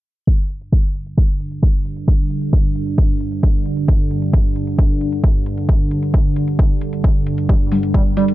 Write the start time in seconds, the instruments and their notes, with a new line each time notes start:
0.27 ambient pad G2 D3, kick, closed hi-hat
0.50 closed hi-hat
0.61 closed hi-hat
0.72 kick, closed hi-hat
0.95 closed hi-hat
1.06 closed hi-hat
1.18 kick, closed hi-hat
1.40 closed hi-hat
1.51 closed hi-hat
1.63 kick, closed hi-hat
1.85 closed hi-hat
1.97 closed hi-hat
2.08 kick, closed hi-hat
2.30 closed hi-hat
2.42 closed hi-hat
2.53 kick, closed hi-hat
2.75 closed hi-hat
2.87 closed hi-hat
2.98 kick, closed hi-hat
3.20 closed hi-hat
3.32 closed hi-hat
3.43 kick, closed hi-hat
3.66 closed hi-hat
3.77 closed hi-hat
3.88 kick, closed hi-hat
4.11 closed hi-hat
4.22 closed hi-hat
4.33 kick, closed hi-hat
4.56 closed hi-hat
4.67 closed hi-hat
4.79 kick, closed hi-hat
5.01 closed hi-hat
5.12 closed hi-hat
5.24 kick, closed hi-hat
5.46 closed hi-hat
5.58 closed hi-hat
5.69 kick, closed hi-hat
5.91 closed hi-hat
6.03 closed hi-hat
6.14 kick, closed hi-hat
6.36 closed hi-hat
6.48 closed hi-hat
6.59 kick, closed hi-hat
6.81 closed hi-hat
6.93 closed hi-hat
7.04 kick, closed hi-hat
7.27 closed hi-hat
7.38 closed hi-hat
7.49 analog synth lead G3, kick, closed hi-hat
7.72 analog synth lead G3, open hi-hat
7.83 closed hi-hat
7.94 analog synth lead G3, kick, closed hi-hat
8.17 analog synth lead G3, open hi-hat
8.28 closed hi-hat